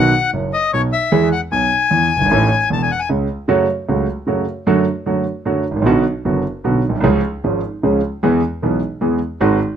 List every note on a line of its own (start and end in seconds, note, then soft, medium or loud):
0.00 0.10 B1 medium
0.00 0.11 B2 medium
0.00 0.10 D#3 medium
0.00 0.10 F#3 medium
0.00 0.11 B3 medium
0.00 0.11 F#4 medium
0.00 0.31 F#5 medium
0.33 0.49 F#1 soft
0.33 0.50 F#2 soft
0.53 0.71 D#5 medium
0.73 0.89 B1 soft
0.73 0.89 B2 soft
0.73 0.82 C#5 medium
0.93 1.29 E5 medium
1.12 1.28 E2 medium
1.12 1.28 E3 medium
1.12 1.28 G#3 medium
1.12 1.29 B3 medium
1.12 1.28 G#4 medium
1.32 1.41 F#5 medium
1.52 1.68 B1 soft
1.52 1.68 B2 medium
1.52 2.69 G#5 medium
1.91 2.07 E2 medium
1.91 2.07 E3 soft
2.16 2.20 F#1 soft
2.21 2.25 G1 medium
2.25 2.30 G#1 medium
2.31 2.47 A1 medium
2.31 2.47 A2 medium
2.31 2.47 E3 medium
2.31 2.47 A3 medium
2.31 2.47 C#4 medium
2.31 2.47 A4 medium
2.70 2.86 E1 soft
2.70 2.86 E2 soft
2.70 2.82 A5 medium
2.83 2.91 G#5 medium
2.91 3.00 F#5 medium
3.00 3.09 G#5 medium
3.09 3.26 C#2 soft
3.09 3.26 C#3 soft
3.48 3.65 F#2 medium
3.48 3.65 C#3 medium
3.48 3.65 F#3 medium
3.48 3.65 A3 medium
3.48 3.66 F#4 medium
3.89 4.05 C#2 soft
3.89 4.05 C#3 soft
3.89 4.05 F#3 soft
3.89 4.05 A3 soft
3.89 4.05 F#4 soft
4.27 4.44 F#2 soft
4.27 4.44 C#3 soft
4.27 4.44 F#3 medium
4.27 4.44 A3 soft
4.27 4.44 F#4 soft
4.67 4.84 F#2 medium
4.67 4.84 D3 medium
4.67 4.84 F#3 medium
4.67 4.84 A3 medium
4.67 4.84 F#4 medium
5.06 5.23 F#2 soft
5.06 5.23 D3 soft
5.06 5.23 F#3 medium
5.06 5.23 A3 soft
5.06 5.23 F#4 soft
5.45 5.62 F#2 medium
5.45 5.63 D3 soft
5.45 5.63 F#3 medium
5.45 5.63 A3 soft
5.45 5.63 F#4 soft
5.71 5.76 G#1 soft
5.76 5.81 A1 medium
5.82 5.86 A#1 medium
5.82 6.02 D3 medium
5.82 6.02 F#3 medium
5.82 6.02 B3 medium
5.86 6.02 B1 medium
5.86 6.02 B2 medium
5.86 6.02 F#4 medium
6.25 6.42 F#1 medium
6.25 6.41 F#2 soft
6.25 6.41 D3 soft
6.25 6.41 F#3 soft
6.25 6.41 B3 soft
6.25 6.42 F#4 soft
6.64 6.81 B1 medium
6.64 6.81 B2 soft
6.64 6.81 D3 soft
6.64 6.81 F#3 soft
6.64 6.81 B3 soft
6.64 6.81 F#4 soft
6.89 6.94 A#1 soft
6.95 6.99 B1 medium
7.00 7.04 C2 medium
7.00 7.20 C#2 medium
7.00 7.20 C#3 medium
7.00 7.20 F3 medium
7.00 7.20 G#3 medium
7.00 7.20 C#4 medium
7.00 7.20 G#4 medium
7.44 7.60 G#1 soft
7.44 7.60 G#2 soft
7.44 7.60 F3 soft
7.44 7.60 G#3 soft
7.44 7.60 C#4 soft
7.44 7.60 G#4 soft
7.83 8.00 C#2 soft
7.83 8.00 C#3 soft
7.83 8.00 F3 soft
7.83 8.00 G#3 soft
7.83 8.00 C#4 soft
7.83 8.00 G#4 soft
8.23 8.40 E2 medium
8.23 8.40 E3 medium
8.23 8.39 G#3 medium
8.23 8.39 B3 medium
8.23 8.39 G#4 medium
8.62 8.79 B1 soft
8.62 8.79 B2 soft
8.62 8.79 E3 soft
8.62 8.79 G#3 soft
8.62 8.79 B3 soft
8.62 8.79 G#4 soft
9.01 9.18 E2 soft
9.01 9.18 E3 medium
9.01 9.18 G#3 soft
9.01 9.18 B3 soft
9.01 9.18 G#4 soft
9.41 9.57 G#1 medium
9.41 9.57 G#2 medium
9.41 9.57 D#3 medium
9.41 9.57 G#3 medium
9.41 9.57 C4 medium
9.41 9.57 F#4 medium